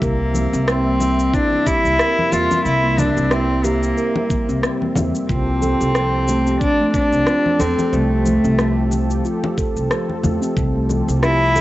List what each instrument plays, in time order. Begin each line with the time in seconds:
Already playing: analog synth pad C3 G3 E5
0.02 upright bass C2, cello A#3, analog synth pad C4, steel tongue drum A#4, kick, cabasa
0.35 steel tongue drum A#3, high conga, cabasa
0.53 upright bass C2, steel tongue drum C4, cabasa
0.68 cello C4, cross-stick, cabasa
0.86 steel tongue drum A#3
1.00 muted conga, cabasa
1.19 steel tongue drum C4, cabasa
1.33 cello D4, steel tongue drum E4, kick, cabasa
1.53 high conga
1.66 cello E4, steel tongue drum G4, kick, cabasa
1.85 upright bass C2, cabasa
1.99 steel tongue drum A#4, cross-stick, cabasa
2.19 high conga
2.32 upright bass E2, steel tongue drum A#3, cello F4, muted conga, cabasa
2.51 steel tongue drum C4, high conga, cabasa
2.65 upright bass C2, cello E4, cabasa
2.84 steel tongue drum A#3
2.98 cello D4, high conga, low conga, cabasa
3.17 upright bass C2, steel tongue drum C4, cabasa
3.31 cello C4, steel tongue drum E4, cross-stick, cabasa
3.64 cello A#3, steel tongue drum G4, muted conga, cabasa
3.83 cabasa
3.97 steel tongue drum A#4, cabasa
4.16 muted conga
4.30 steel tongue drum A#3, kick, high conga, cabasa
4.49 upright bass C2, steel tongue drum C4, cabasa
4.63 cross-stick, cabasa
4.82 steel tongue drum A#3, high conga
4.95 upright bass E2, high conga, low conga, cabasa
5.15 steel tongue drum C4, cabasa
5.29 upright bass C2, analog synth pad F3 G4 A4, cello C4, steel tongue drum F4, kick, cabasa
5.62 steel tongue drum A4, high conga, cabasa
5.81 upright bass C2, cabasa
5.95 steel tongue drum C5, cross-stick, cabasa
6.28 steel tongue drum A3, muted conga, cabasa
6.46 steel tongue drum C4, cabasa
6.61 cello D4, kick, cabasa
6.79 steel tongue drum A3, high conga
6.94 cello D4, kick, cabasa
7.13 upright bass C2, steel tongue drum C4, cabasa
7.27 steel tongue drum F4, cross-stick, cabasa
7.46 high conga
7.60 upright bass E2, cello C4, steel tongue drum A4, muted conga, cabasa
7.79 high conga, cabasa
7.93 upright bass C2, cello A3, steel tongue drum C5, cabasa
8.26 steel tongue drum A3, high conga, cabasa
8.44 upright bass C2, steel tongue drum C4, cabasa
8.59 cross-stick, cabasa
8.78 steel tongue drum A3
8.91 muted conga, cabasa
9.11 steel tongue drum C4, cabasa
9.25 steel tongue drum F4, cabasa
9.44 muted conga
9.58 steel tongue drum A4, kick, cabasa
9.76 upright bass C2, cabasa
9.91 steel tongue drum C5, cross-stick, cabasa
10.10 high conga
10.23 upright bass E2, steel tongue drum A3, high conga, low conga, cabasa
10.42 steel tongue drum C4, cabasa
10.57 upright bass C2, kick, cabasa
10.75 steel tongue drum A3
10.89 high conga, cabasa
11.08 upright bass C2, steel tongue drum C4, cabasa
11.22 cello E4, steel tongue drum F4, cross-stick, cabasa
11.56 steel tongue drum A4, muted conga, cabasa